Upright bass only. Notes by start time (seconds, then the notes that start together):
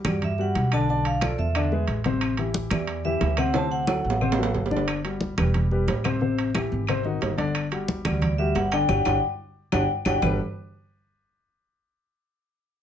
0.05 G2
0.55 B1
1.38 E2
1.88 A1
2.71 E2
3.21 D2
4.04 A1
4.55 G1
5.38 E1
5.88 A1
6.72 G#1
7.22 G1
8.06 D2
8.55 G1
8.89 G1
9.05 G1
9.72 G1
10.06 G1
10.22 G1